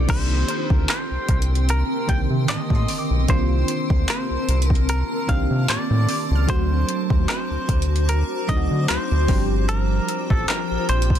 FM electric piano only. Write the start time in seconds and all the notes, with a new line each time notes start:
0.07 D#3 A#3 C4 D4 G4
2.07 D3 D#3 A#3 C4 G4
3.27 D#3 A#3 C4 D4 F4
5.27 D#3 A#3 C4 D4 G4
6.47 F#3 A3 C4 D4 F#4
8.47 F#3 A3 C4 D4 D#4
8.57 F#4
9.27 F3 G3 C4 D4 G4